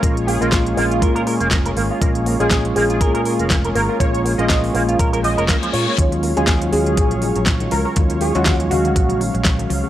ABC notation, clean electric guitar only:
X:1
M:4/4
L:1/16
Q:"Swing 16ths" 1/4=121
K:Ebm
V:1 name="Clean electric guitar"
B, z B, B, z2 B, F B B B B, B, B B, F | B, z B, B, z2 B, F B B B B, B, B B, F | B, z B, B, z2 B, F B B F, B B, F, F B, | z16 |
z16 |]